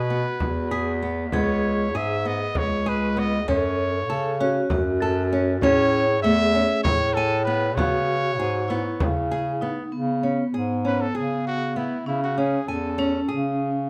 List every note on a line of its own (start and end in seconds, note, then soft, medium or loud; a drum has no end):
0.00 0.25 B2 medium
0.00 0.98 F#4 medium
0.00 0.98 B4 medium
0.10 0.51 B3 medium
0.10 frame drum soft
0.40 1.35 E2 medium
0.40 frame drum medium
0.71 0.92 G#4 medium
0.71 1.60 B6 soft
1.02 1.23 B3 medium
1.32 1.96 C#2 medium
1.32 1.74 B3 medium
1.32 3.44 G#4 medium
1.32 1.98 C#5 medium
1.32 frame drum medium
1.94 2.49 G#2 medium
1.94 2.15 G#4 medium
1.94 2.29 E5 medium
1.94 frame drum soft
2.25 2.66 B3 medium
2.25 2.59 D#5 medium
2.55 3.50 C#2 medium
2.55 2.90 C#5 medium
2.55 frame drum medium
2.86 3.07 G#4 medium
2.86 3.21 B4 medium
3.17 3.37 B3 medium
3.17 3.49 D#5 medium
3.48 4.11 F#2 medium
3.48 3.88 C#4 medium
3.48 4.43 A4 medium
3.48 4.67 C#5 medium
3.48 frame drum medium
4.09 4.64 C#3 medium
4.09 4.30 A4 medium
4.09 frame drum soft
4.40 4.81 C#4 medium
4.40 4.70 F#4 medium
4.70 5.64 F#2 loud
4.70 5.66 F#4 medium
4.70 frame drum medium
5.01 5.22 A4 medium
5.01 5.89 A6 soft
5.33 5.53 C#4 medium
5.62 6.26 A2 medium
5.62 6.03 C#4 medium
5.62 7.85 G#4 medium
5.62 6.20 C#5 loud
5.62 frame drum medium
6.23 6.69 E2 medium
6.23 6.44 A3 medium
6.23 6.81 E5 loud
6.23 frame drum soft
6.55 6.95 C#4 medium
6.83 7.79 A2 medium
6.83 7.15 C#5 medium
6.83 frame drum medium
7.14 7.44 A4 medium
7.14 7.37 G#5 medium
7.45 7.67 B3 medium
7.45 7.77 B4 medium
7.76 8.40 C#3 medium
7.76 8.19 B3 medium
7.76 8.66 F#4 medium
7.76 9.30 C#5 medium
7.76 frame drum medium
8.39 8.93 G#2 medium
8.39 8.59 G#4 medium
8.39 frame drum soft
8.68 9.10 B3 medium
8.68 9.64 E4 medium
8.68 frame drum soft
9.00 9.82 C#3 medium
9.00 frame drum medium
9.31 9.51 G#4 medium
9.31 frame drum soft
9.61 9.82 B3 medium
9.61 9.90 D#4 medium
9.92 10.47 C#3 medium
9.92 12.03 B3 medium
10.23 10.43 C#4 medium
10.54 11.08 G#2 medium
10.54 10.74 G#4 medium
10.85 11.05 C#4 medium
10.85 11.03 B4 medium
11.01 11.18 A4 medium
11.15 11.97 C#3 medium
11.15 11.55 G#4 medium
11.15 11.47 G#4 medium
11.47 11.78 F#4 medium
11.76 11.96 B3 medium
11.76 12.07 E4 medium
12.06 12.61 C#3 medium
12.06 12.98 C#4 medium
12.06 12.22 E4 medium
12.24 12.40 F#4 medium
12.38 12.58 C#4 medium
12.38 12.69 G#4 medium
12.68 13.23 E2 medium
12.68 13.37 A4 medium
12.68 12.89 G#5 medium
12.98 13.19 C#4 medium
12.98 13.90 C#4 medium
13.28 13.90 C#3 medium
13.28 13.69 G#4 medium